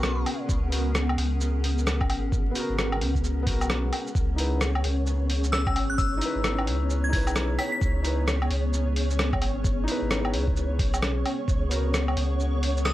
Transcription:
Already playing: sub bass B1, felt piano B3 F#4 A#4, ambient pad B3 C#4 G#4 A#4 F#5, synth bell C#6
0.03 cross-stick, shaker
0.26 open hi-hat, low woodblock
0.49 sub bass C#2, kick, shaker
0.70 felt piano B3 F#4, open hi-hat, shaker
0.74 felt piano A#4
0.95 cross-stick, shaker
1.09 low woodblock
1.17 sub bass C#2, open hi-hat
1.41 shaker
1.64 open hi-hat
1.78 shaker
1.87 cross-stick, shaker
2.01 kick, low woodblock
2.09 sub bass G#1, open hi-hat, low woodblock
2.32 kick, shaker
2.51 felt piano B3 F#4
2.55 felt piano A#4, open hi-hat, shaker
2.69 sub bass G#1
2.79 cross-stick, shaker
2.92 low woodblock
3.01 sub bass C#2, open hi-hat
3.15 kick, shaker
3.24 shaker
3.43 sub bass B1, felt piano B3 F#4
3.47 kick, open hi-hat
3.51 felt piano A#4
3.61 low woodblock, shaker
3.70 cross-stick, shaker
3.93 open hi-hat, low woodblock
4.07 shaker
4.15 sub bass C#2, ambient pad B3 G#4 C#5, synth texture C#5, kick, shaker
4.36 felt piano D#4 E4, open hi-hat, shaker
4.40 felt piano B4
4.61 cross-stick, shaker
4.75 low woodblock
4.84 sub bass C#2, open hi-hat
5.06 shaker
5.30 open hi-hat
5.44 shaker
5.52 synth bell E6, cross-stick, shaker
5.67 kick, low woodblock
5.76 sub bass G#1, open hi-hat, low woodblock
5.90 synth bell F#6
5.98 synth bell E6, kick, shaker
6.17 felt piano D#4 E4
6.21 open hi-hat, shaker
6.25 felt piano B4
6.35 sub bass G#1
6.44 cross-stick, shaker
6.58 low woodblock
6.67 sub bass C#2, open hi-hat
6.90 shaker
7.04 synth bell G#6
7.09 sub bass B1, felt piano D#4, synth bell G#6, kick
7.13 felt piano E4 B4, open hi-hat
7.27 low woodblock, shaker
7.36 cross-stick, shaker
7.58 synth bell B6, open hi-hat, low woodblock
7.72 synth bell B6
7.81 sub bass C#2, kick, shaker
8.02 felt piano D#4 E4, open hi-hat, shaker
8.07 felt piano B4
8.28 cross-stick, shaker
8.42 low woodblock
8.50 sub bass C#2, open hi-hat
8.73 shaker
8.96 open hi-hat
9.10 shaker
9.19 cross-stick, shaker
9.33 kick, low woodblock
9.42 sub bass G#1, open hi-hat, low woodblock
9.64 kick, shaker
9.84 felt piano D#4 E4
9.88 felt piano B4, open hi-hat, shaker
10.02 sub bass G#1
10.11 cross-stick, shaker
10.25 low woodblock
10.34 sub bass C#2, open hi-hat
10.47 kick
10.56 shaker
10.79 sub bass B1, kick, open hi-hat
10.94 low woodblock, shaker
11.02 cross-stick, shaker
11.26 open hi-hat, low woodblock
11.48 sub bass C#2, ambient pad C#4 G#4 A#4 F#5, kick, shaker
11.69 felt piano B3 F#4 A#4, open hi-hat, shaker
11.94 cross-stick, shaker
12.08 low woodblock
12.17 sub bass C#2, open hi-hat
12.40 shaker
12.63 open hi-hat
12.77 shaker
12.85 synth bell D#6, cross-stick, shaker

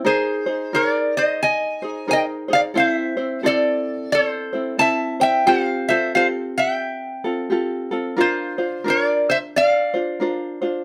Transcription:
0.05 ukulele D#4 G#4 A#4 C5, resonator guitar played with a steel bar G#4 C5
0.46 ukulele D#4 G#4 C5
0.73 ukulele D#4 G#4 A#4 C5, resonator guitar played with a steel bar A#4 D5
1.17 resonator guitar played with a steel bar C5 D#5
1.43 resonator guitar played with a steel bar D#5 G#5
1.82 ukulele D#4 G#4 C5
2.08 ukulele D#4 G#4 A#4 C5, resonator guitar played with a steel bar G5
2.13 resonator guitar played with a steel bar D#5
2.48 ukulele D#4 G#4 C5
2.53 resonator guitar played with a steel bar D5 F5
2.74 ukulele C4 E4 A4 C5, resonator guitar played with a steel bar F5
2.80 resonator guitar played with a steel bar C5
2.88 resonator guitar played with a steel bar E5
3.17 ukulele C4 E4 C5
3.43 ukulele C4 E4 A4 C5, resonator guitar played with a steel bar D5
3.47 resonator guitar played with a steel bar A4
4.12 resonator guitar played with a steel bar A4 C5
4.53 ukulele C4 E4 C5
4.78 ukulele C4 E4 A4 C5, resonator guitar played with a steel bar E5 A5
5.20 ukulele C4 E4 C5, resonator guitar played with a steel bar E5 G5
5.47 ukulele C4 F4 G4 A4, resonator guitar played with a steel bar C5 F#5
5.64 resonator guitar played with a steel bar F5
5.89 ukulele C4 F4 A4, resonator guitar played with a steel bar C5 E5
6.15 ukulele C4 F4 G4 A4, resonator guitar played with a steel bar C5 F5
6.58 resonator guitar played with a steel bar E5 G5
7.24 ukulele C4 F4 A4
7.50 ukulele C4 F4 G4 A4
7.91 ukulele C4 F4 A4
8.17 ukulele D4 F4 A#4 C5, resonator guitar played with a steel bar F4
8.21 resonator guitar played with a steel bar C5
8.58 ukulele D4 F4 C5
8.84 ukulele D4 F4 A#4 C5, resonator guitar played with a steel bar A#4
8.90 resonator guitar played with a steel bar D5
9.30 resonator guitar played with a steel bar C5 E5
9.56 resonator guitar played with a steel bar D5 F5
9.94 ukulele D4 F4 C5
10.20 ukulele D4 F4 A#4 C5
10.62 ukulele D4 F4 C5

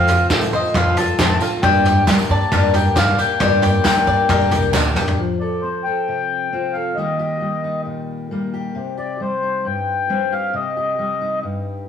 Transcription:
Already playing: upright piano F1 F2 F3 C4 A4 C5, upright bass F2, five-string banjo C4, accordion F5
0.07 twelve-string acoustic guitar C4 F4 A4, five-string banjo F4, floor tom, tambourine
0.30 twelve-string acoustic guitar F3 C4 F4 A4, upright bass F3, five-string banjo A4, kick, snare, clap, tambourine
0.41 tambourine
0.51 upright bass F2, twelve-string acoustic guitar C4 F4 A4, five-string banjo C5, accordion D#5, tambourine
0.63 tambourine
0.74 upright bass F2, twelve-string acoustic guitar F3 C4 F4 A4, five-string banjo A4, accordion F5, kick, clap, floor tom, tambourine
0.97 twelve-string acoustic guitar C4 F4 A4, five-string banjo F4, accordion A5, floor tom, tambourine
1.08 tambourine
1.19 upright bass F2, twelve-string acoustic guitar F3 C4 F4 A4, five-string banjo C4, kick, snare, clap, tambourine
1.30 tambourine
1.41 twelve-string acoustic guitar C4 F4 A4, five-string banjo F4, tambourine
1.63 upright piano G1 G2 G3 D4 A#4 D5, twelve-string acoustic guitar G2 D3 G3 A#3 D4 G4, upright bass G2, five-string banjo D4, accordion G5, kick, floor tom
1.74 tambourine
1.85 twelve-string acoustic guitar G3 A#3 D4 G4, five-string banjo G4, floor tom, tambourine
2.07 twelve-string acoustic guitar G3 A#3 D4 G4, upright bass G3, five-string banjo A#4, kick, snare, clap, tambourine
2.19 tambourine
2.29 upright bass G2, twelve-string acoustic guitar G3 A#3 D4 G4, five-string banjo D5, accordion A5
2.41 tambourine
2.52 twelve-string acoustic guitar G2 D3 G3 A#3 D4 G4, upright bass G2, five-string banjo A#4, kick, clap, floor tom, tambourine
2.73 twelve-string acoustic guitar G3 A#3 D4 G4, five-string banjo G4, accordion G5, floor tom, tambourine
2.86 tambourine
2.96 upright bass G2, twelve-string acoustic guitar G3 A#3 D4 G4, five-string banjo D4, accordion F5, kick, snare, clap, tambourine
3.08 tambourine
3.18 twelve-string acoustic guitar G3 A#3 D4 G4, five-string banjo G4, accordion G5, tambourine
3.40 upright piano G1 G2 G3 D4 A#4 D5, twelve-string acoustic guitar G2 D3 G3 A#3 D4 G4, upright bass G2, five-string banjo D4, kick, floor tom, tambourine
3.62 twelve-string acoustic guitar G3 A#3 D4 G4, five-string banjo G4, floor tom, tambourine
3.74 tambourine
3.84 twelve-string acoustic guitar G3 A#3 D4 G4, upright bass G3, five-string banjo A#4, kick, snare, clap, tambourine
4.06 upright bass G2, twelve-string acoustic guitar G3 A#3 D4 G4, five-string banjo D5, tambourine
4.29 upright bass G2, twelve-string acoustic guitar G2 D3 G3 A#3 D4 G4, five-string banjo A#4, kick, floor tom
4.40 tambourine
4.51 upright bass C2, twelve-string acoustic guitar G3 A#3 D4 G4, five-string banjo G4, upright piano G5, floor tom, tambourine
4.63 tambourine
4.74 upright bass D2, twelve-string acoustic guitar G3 A#3 D4 G4, five-string banjo D4, upright piano D5, kick, snare, clap, tambourine
4.95 upright bass F2, upright piano G3 D4 A#4 D5, twelve-string acoustic guitar G3 A#3 D4 G4, five-string banjo G4, mid tom, tambourine
5.07 floor tom, tambourine
5.19 steel-string acoustic guitar F3
5.40 steel-string acoustic guitar A4, accordion D5
5.61 steel-string acoustic guitar C4, accordion C5
5.84 steel-string acoustic guitar A4, accordion G5
6.08 steel-string acoustic guitar C3
6.53 steel-string acoustic guitar C4 F4
6.73 steel-string acoustic guitar A4, accordion F5
6.95 steel-string acoustic guitar D#3 G3 A#3 D#4, accordion D#5
6.99 steel-string acoustic guitar G4
7.19 steel-string acoustic guitar G4
7.41 steel-string acoustic guitar G3
7.64 steel-string acoustic guitar D#4
7.85 steel-string acoustic guitar A#2
8.31 steel-string acoustic guitar G3 A#3
8.54 steel-string acoustic guitar G4
8.75 steel-string acoustic guitar C3
8.97 steel-string acoustic guitar G4, accordion D5
9.20 steel-string acoustic guitar G3, accordion C5
9.43 steel-string acoustic guitar D#4
9.65 steel-string acoustic guitar G2, accordion G5
10.09 steel-string acoustic guitar G3 C4
10.32 steel-string acoustic guitar G4, accordion F5
10.54 steel-string acoustic guitar C3, accordion D#5
10.77 steel-string acoustic guitar G4
10.99 steel-string acoustic guitar G3
11.21 steel-string acoustic guitar D#4
11.43 steel-string acoustic guitar G2

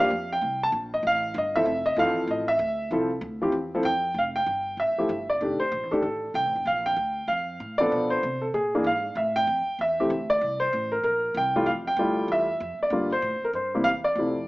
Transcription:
0.00 grand piano F5
0.10 upright bass F2
0.32 grand piano G5
0.41 upright bass C2
0.63 grand piano A5
0.72 upright bass A#1
0.94 grand piano D#5
1.03 upright bass A1
1.07 grand piano F5
1.34 upright bass G1, grand piano D#5
1.56 grand piano F3 C4 E4 A4 E5
1.66 upright bass F1
1.86 grand piano D#5
1.96 upright bass G1, grand piano E3 F3 C4 A4 F5
2.16 muted upright bass stroke
2.27 upright bass A1, grand piano D#5
2.48 grand piano E5
2.59 upright bass D2
2.91 upright bass C2, grand piano F3 C4 E4 A4
3.21 upright bass D2
3.42 grand piano F3 C4 E4 G4
3.52 upright bass E2
3.75 grand piano F3 C4 E4 A4
3.83 upright bass F2, grand piano G5
4.14 upright bass F1
4.18 grand piano F5
4.36 grand piano G5
4.46 upright bass G1
4.77 upright bass A1, grand piano E5
4.96 grand piano F3 A3 E4 G4, muted upright bass stroke
5.09 upright bass G1
5.30 grand piano D5
5.41 upright bass F1, grand piano D#3 A3 D4 G4
5.60 grand piano C5, muted upright bass stroke
5.72 upright bass A#1
5.83 upright bass A1
5.91 upright bass F1, grand piano D#3 A3 D4 G4 A4
6.02 upright bass A1, grand piano A4
6.34 upright bass C2, grand piano G5
6.45 upright bass A1
6.56 upright bass F1
6.65 upright bass A#1, grand piano F5
6.86 grand piano G5
6.96 upright bass D2
7.27 upright bass F2, grand piano F5
7.60 upright bass A2
7.78 grand piano F3 B3 D4 A4 D5
7.92 upright bass B2
8.10 grand piano C5
8.23 upright bass C3
8.41 grand piano A4
8.54 upright bass A#2, grand piano G#4
8.75 grand piano E3 A#3 D4 G#4
8.84 upright bass G#2, grand piano F5
9.15 upright bass A2, grand piano E5
9.36 grand piano G5
9.47 upright bass F2
9.66 muted upright bass stroke
9.79 upright bass E2, grand piano E5
10.00 grand piano E3 A3 C4 G4
10.10 upright bass D2
10.30 grand piano D5
10.41 upright bass C2
10.60 grand piano C5
10.73 upright bass A1
10.92 grand piano A#4
11.03 upright bass A#1, grand piano A#4
11.34 upright bass C2, grand piano G5
11.56 grand piano E3 G3 A3 F4
11.66 upright bass F2, grand piano F5
11.87 grand piano G5
11.97 upright bass D2, grand piano G3 A3 E4 F4
12.28 upright bass E2, grand piano E5
12.60 upright bass F2
12.79 grand piano D5, muted upright bass stroke
12.90 upright bass G2, grand piano D3 G3 A#3 F4
13.12 grand piano C5
13.22 upright bass A2
13.42 grand piano A#4, muted upright bass stroke
13.53 upright bass G2, grand piano C5
13.74 grand piano C3 G3 A#3 E4
13.84 upright bass E2, grand piano F5
14.04 grand piano D5
14.15 upright bass F2, grand piano C3 F3 A3 E4

